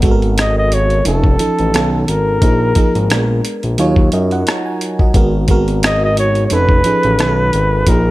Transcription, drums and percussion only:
0.02 kick, closed hi-hat
0.22 closed hi-hat
0.38 cross-stick, closed hi-hat
0.72 closed hi-hat
0.90 closed hi-hat
1.05 closed hi-hat
1.24 kick
1.39 closed hi-hat
1.59 closed hi-hat
1.74 cross-stick, closed hi-hat
2.08 closed hi-hat
2.42 kick, closed hi-hat
2.75 kick, closed hi-hat
2.95 closed hi-hat
3.10 cross-stick, closed hi-hat
3.45 closed hi-hat
3.63 closed hi-hat
3.78 closed hi-hat
3.96 kick
4.12 closed hi-hat
4.31 closed hi-hat
4.47 cross-stick, closed hi-hat
4.81 closed hi-hat
4.99 kick
5.14 kick, closed hi-hat
5.48 kick, closed hi-hat
5.68 closed hi-hat
5.83 cross-stick, closed hi-hat
6.17 closed hi-hat
6.35 closed hi-hat
6.50 closed hi-hat
6.69 kick
6.84 closed hi-hat
7.03 closed hi-hat
7.19 cross-stick, closed hi-hat
7.53 closed hi-hat
7.87 kick, closed hi-hat

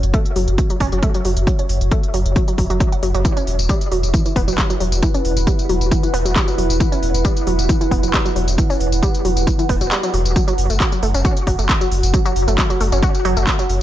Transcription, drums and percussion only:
0.03 closed hi-hat
0.14 kick, closed hi-hat
0.26 closed hi-hat
0.36 open hi-hat
0.48 closed hi-hat
0.58 kick, closed hi-hat
0.70 closed hi-hat
0.80 kick, open hi-hat
0.92 closed hi-hat
1.03 kick, closed hi-hat
1.14 closed hi-hat
1.25 open hi-hat
1.37 closed hi-hat
1.47 kick, closed hi-hat
1.59 closed hi-hat
1.69 open hi-hat
1.81 closed hi-hat
1.91 kick, closed hi-hat
2.03 closed hi-hat
2.14 open hi-hat
2.26 closed hi-hat
2.36 kick, closed hi-hat
2.48 closed hi-hat
2.58 kick, open hi-hat
2.70 closed hi-hat
2.80 kick, closed hi-hat
2.92 closed hi-hat
3.03 open hi-hat
3.15 closed hi-hat
3.25 kick, closed hi-hat, tambourine
3.37 closed hi-hat, tambourine
3.47 open hi-hat
3.59 closed hi-hat, tambourine
3.69 kick, closed hi-hat, tambourine
3.81 closed hi-hat, tambourine
3.92 open hi-hat
4.03 closed hi-hat, tambourine
4.14 kick, closed hi-hat, tambourine
4.26 closed hi-hat, tambourine
4.36 kick, open hi-hat
4.48 closed hi-hat, tambourine
4.58 kick, clap, closed hi-hat, tambourine
4.70 closed hi-hat, tambourine
4.80 open hi-hat
4.92 closed hi-hat, tambourine
5.03 kick, closed hi-hat, tambourine
5.14 closed hi-hat, tambourine
5.25 open hi-hat
5.37 closed hi-hat, tambourine
5.47 kick, closed hi-hat, tambourine
5.59 closed hi-hat, tambourine
5.69 open hi-hat
5.81 closed hi-hat, tambourine
5.91 kick, closed hi-hat, tambourine
6.03 closed hi-hat, tambourine
6.14 open hi-hat
6.26 closed hi-hat, tambourine
6.36 kick, clap, closed hi-hat, tambourine
6.48 closed hi-hat, tambourine
6.58 open hi-hat
6.70 closed hi-hat, tambourine
6.80 kick, closed hi-hat, tambourine
6.92 closed hi-hat, tambourine
7.03 open hi-hat
7.14 closed hi-hat, tambourine
7.25 kick, closed hi-hat, tambourine
7.37 closed hi-hat, tambourine
7.47 open hi-hat
7.59 closed hi-hat, tambourine
7.69 kick, closed hi-hat, tambourine
7.81 closed hi-hat, tambourine
7.91 kick, open hi-hat
8.03 closed hi-hat, tambourine
8.14 kick, clap, closed hi-hat, tambourine
8.26 closed hi-hat, tambourine
8.36 open hi-hat
8.48 closed hi-hat, tambourine
8.58 kick, closed hi-hat, tambourine
8.70 open hi-hat, tambourine
8.80 open hi-hat
8.92 closed hi-hat, tambourine
9.03 kick, closed hi-hat, tambourine
9.15 closed hi-hat, tambourine
9.25 open hi-hat
9.37 closed hi-hat, tambourine
9.47 kick, closed hi-hat, tambourine
9.59 closed hi-hat, tambourine
9.69 kick, open hi-hat
9.81 closed hi-hat, tambourine
9.92 clap, closed hi-hat, tambourine
10.03 closed hi-hat, tambourine
10.14 open hi-hat
10.26 closed hi-hat, tambourine
10.36 kick, closed hi-hat, tambourine
10.48 closed hi-hat, tambourine
10.58 open hi-hat
10.70 closed hi-hat, tambourine
10.80 kick, clap, closed hi-hat, tambourine
10.92 closed hi-hat, tambourine
11.03 open hi-hat
11.14 closed hi-hat, tambourine
11.25 kick, closed hi-hat, tambourine
11.37 closed hi-hat, tambourine
11.47 kick, open hi-hat
11.59 closed hi-hat, tambourine
11.69 kick, clap, closed hi-hat, tambourine
11.81 closed hi-hat, tambourine
11.92 open hi-hat
12.03 closed hi-hat, tambourine
12.14 kick, closed hi-hat, tambourine
12.26 closed hi-hat, tambourine
12.36 open hi-hat
12.48 closed hi-hat, tambourine
12.58 kick, clap, closed hi-hat, tambourine
12.70 closed hi-hat, tambourine
12.81 open hi-hat
12.92 closed hi-hat, tambourine
13.03 kick, closed hi-hat, tambourine
13.15 closed hi-hat, tambourine
13.25 open hi-hat
13.37 closed hi-hat, tambourine
13.47 kick, clap, closed hi-hat, tambourine
13.59 closed hi-hat, tambourine
13.69 open hi-hat

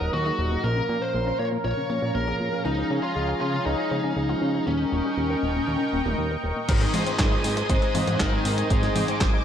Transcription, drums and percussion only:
6.69 kick, closed hi-hat, crash
6.81 snare, closed hi-hat
6.94 open hi-hat, high tom
7.07 closed hi-hat
7.19 kick, snare, clap, closed hi-hat
7.44 open hi-hat
7.57 closed hi-hat
7.70 kick, closed hi-hat
7.82 closed hi-hat
7.95 open hi-hat, high tom
8.07 closed hi-hat, high tom
8.20 kick, snare, clap, closed hi-hat
8.45 open hi-hat
8.58 closed hi-hat
8.70 kick, closed hi-hat
8.83 snare, closed hi-hat
8.96 open hi-hat, high tom
9.08 closed hi-hat
9.21 kick, snare, clap, closed hi-hat

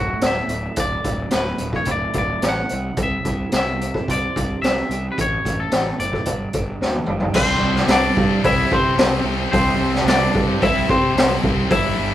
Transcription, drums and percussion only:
0.21 snare, closed hi-hat
0.49 closed hi-hat
0.76 kick, closed hi-hat
1.04 kick, closed hi-hat
1.31 snare, closed hi-hat
1.58 closed hi-hat
1.73 kick
1.85 kick, closed hi-hat
2.13 kick, closed hi-hat
2.42 snare, closed hi-hat
2.69 closed hi-hat
2.97 kick, closed hi-hat
3.25 kick, closed hi-hat
3.52 snare, closed hi-hat
3.81 closed hi-hat
3.94 kick
4.08 kick, closed hi-hat
4.36 kick, closed hi-hat
4.64 snare, closed hi-hat
4.91 closed hi-hat
5.18 kick, closed hi-hat
5.45 kick, closed hi-hat
5.71 snare, closed hi-hat
6.00 closed hi-hat
6.13 kick
6.25 kick, closed hi-hat
6.53 kick, closed hi-hat
6.82 snare
6.94 high tom
7.06 mid tom
7.20 floor tom
7.34 kick, crash
7.76 snare
7.88 snare, open hi-hat
8.17 kick
8.44 kick, open hi-hat
8.71 kick
8.98 snare, open hi-hat
9.53 kick, open hi-hat
9.95 snare
10.07 snare, open hi-hat
10.35 kick
10.62 kick, open hi-hat
10.89 kick
11.17 snare, open hi-hat
11.44 kick
11.71 kick, open hi-hat

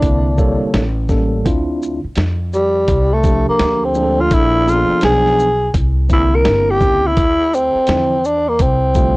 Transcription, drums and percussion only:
0.02 kick, closed hi-hat
0.38 kick, shaker
0.74 snare, closed hi-hat
1.09 kick, snare, shaker
1.46 kick, closed hi-hat
1.83 shaker
2.16 snare, closed hi-hat
2.53 shaker
2.88 kick, closed hi-hat
3.24 kick, closed hi-hat, shaker
3.59 snare, closed hi-hat
3.95 shaker
4.31 kick, closed hi-hat
4.68 shaker
5.01 snare, closed hi-hat
5.26 snare
5.39 shaker
5.74 kick, closed hi-hat
6.10 kick, closed hi-hat, shaker
6.45 snare, closed hi-hat
6.80 kick, snare, shaker
7.17 kick, closed hi-hat
7.54 shaker
7.87 snare, closed hi-hat
8.25 shaker
8.59 kick, closed hi-hat
8.95 kick, closed hi-hat, shaker

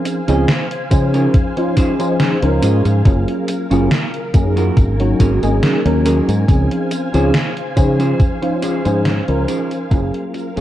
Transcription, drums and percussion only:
0.05 closed hi-hat, tambourine
0.28 closed hi-hat, tambourine
0.48 snare, closed hi-hat, tambourine
0.71 closed hi-hat
0.91 kick, closed hi-hat, tambourine
1.14 closed hi-hat, tambourine
1.34 kick, closed hi-hat, tambourine
1.57 closed hi-hat
1.77 kick, closed hi-hat, tambourine
2.00 closed hi-hat, tambourine
2.20 snare, closed hi-hat, tambourine
2.42 closed hi-hat
2.63 closed hi-hat, tambourine
2.85 closed hi-hat, tambourine
3.05 kick, closed hi-hat, tambourine
3.28 closed hi-hat
3.48 closed hi-hat, tambourine
3.71 closed hi-hat, tambourine
3.91 snare, closed hi-hat, tambourine
4.14 closed hi-hat
4.34 kick, closed hi-hat, tambourine
4.57 closed hi-hat, tambourine
4.77 kick, closed hi-hat, tambourine
5.00 closed hi-hat
5.20 kick, closed hi-hat, tambourine
5.43 closed hi-hat, tambourine
5.63 snare, closed hi-hat, tambourine
5.86 closed hi-hat
6.06 closed hi-hat, tambourine
6.29 closed hi-hat, tambourine
6.48 kick, closed hi-hat, tambourine
6.71 closed hi-hat
6.91 closed hi-hat, tambourine
7.14 closed hi-hat, tambourine
7.34 snare, closed hi-hat, tambourine
7.57 closed hi-hat
7.77 kick, closed hi-hat, tambourine
8.00 closed hi-hat, tambourine
8.20 kick, closed hi-hat, tambourine
8.43 closed hi-hat
8.63 closed hi-hat, tambourine
8.85 closed hi-hat, tambourine
9.05 snare, closed hi-hat, tambourine
9.28 closed hi-hat
9.48 closed hi-hat, tambourine
9.71 closed hi-hat, tambourine
9.91 kick, closed hi-hat, tambourine
10.14 closed hi-hat
10.34 closed hi-hat, tambourine
10.57 closed hi-hat, tambourine

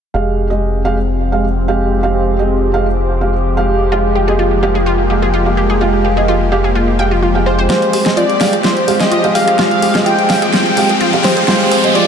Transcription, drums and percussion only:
7.70 snare, closed hi-hat
7.82 closed hi-hat
7.93 open hi-hat
8.06 snare, closed hi-hat
8.17 closed hi-hat
8.30 closed hi-hat
8.41 snare, open hi-hat
8.53 closed hi-hat
8.64 snare, closed hi-hat
8.77 closed hi-hat
8.88 open hi-hat
9.00 snare, closed hi-hat
9.12 closed hi-hat
9.24 closed hi-hat
9.35 open hi-hat
9.48 closed hi-hat
9.59 snare, closed hi-hat
9.71 closed hi-hat
9.82 open hi-hat
9.95 snare, closed hi-hat
10.06 closed hi-hat
10.19 closed hi-hat
10.30 snare, open hi-hat
10.42 closed hi-hat
10.53 snare, closed hi-hat
10.66 closed hi-hat
10.77 open hi-hat
10.89 closed hi-hat
11.01 closed hi-hat
11.13 closed hi-hat
11.24 snare, open hi-hat
11.37 closed hi-hat
11.48 snare, closed hi-hat
11.60 closed hi-hat
11.71 open hi-hat
11.84 closed hi-hat
11.95 closed hi-hat

